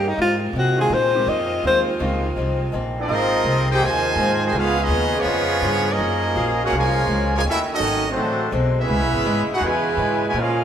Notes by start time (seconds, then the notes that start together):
Already playing: G2 C#3 G3 A#3 D#4
0.08 D#4
0.18 G#2 C3 F3 G#3 A#3 C4 F4
0.53 G#2 C3 F3 A#3 C4
0.59 F#4
0.77 D#3 G#3 A#3 C4 F4 G#4
0.90 G#2 A#2 F3 A#3 C4
0.94 C5
1.15 D#3 G#3 A#3 C4 G4
1.27 F2 G#2 F3 A#3 C4 D#5
1.63 D#2 G#2 D#3 F3 G#3 A#3 C4 F4
1.67 C5
1.99 C#2 G#2 D#3 F3 G#3 A#3 C4 F4
2.36 C2 G#2 F3 A#3 C4
2.72 A#1 G#2 F3 A#3 C4
2.97 F3 C4 D#4 F4 A#4 D#5
3.09 G#1 G#2 C3 F3 A#3 C4 F4 G#4
3.44 C2 G#2 F3 A#3 C4
3.71 D#4 G4 G#4 C5 G5
3.80 D#2 G#2 D#3 F3 G#3 A#3 C4
3.84 F4 C5 D#5 G#5
4.16 G#2 F3 A#3 C4
4.43 D#3 F3 G#3 F4 C5 D#5 G#5
4.52 C#2 C#3 G#3 B3 F4
4.58 C#4 G#4 B4 F5
4.78 G#3 B3 C#4 D#4
4.82 G#4 B4 D#5
4.88 D#2 C#3 G#3 B3 F4
5.16 F3 G#3 B3 C#4 F4 G#4 C#5
5.25 F2 C#3 G#3 B3 F4
5.62 G2 C#3 G#3 B3 F4
5.88 F3 A#3 C#4 D#4 G#4 A#4 D#5
5.99 F#2 F#3 A#3 F4 G#4
6.35 A#1 F#3 A#3 F4 G#4
6.62 A#3 C#4 F#4 G#4 A#4 F#5
6.71 C2 F#3 G#3 A#3 F4 G#4
6.76 F3 C#4 F4 A#4 C#5 G#5
7.07 C#2 F#3 A#3 F4 G#4
7.35 C#3 F3 G#3 F4 A#4 C#5 G#5
7.43 D#2 D#3 A3 C#4
7.47 C#4 E4 F#4 A4 E5
7.72 F#3 A3 C#4 D#4 F#4 A4 D#5
7.80 G#1 D#3 A3 C#4 F#4
8.08 F#3 A3 C4 D4 F#4 C5
8.14 A1 D3 G#3 C4
8.19 F#4
8.51 B1 D3 G#3 C4 F#4
8.79 G#3 B3 C#4 E4 G#4 B4 E5
8.88 C#2 C#3 G#3 B3 E4
9.01 B1
9.12 G#1
9.25 G#2 C#3 G#3 B3 E4
9.48 muted upright bass stroke
9.52 D#4 F#4 G#4 B4 F#5
9.61 E2 C#3 G#3 B3 E4 C#5
9.65 B2 E3 G#3 E4 B4 G#5
9.97 G#2 C#3 G#3 B3 E4
10.25 B2 E3 G#3 E4 B4 C#5 G#5
10.34 A#2 C#3 F3 G#3 A#3 C#4 F4
10.38 C#4 G#4 A#4 F5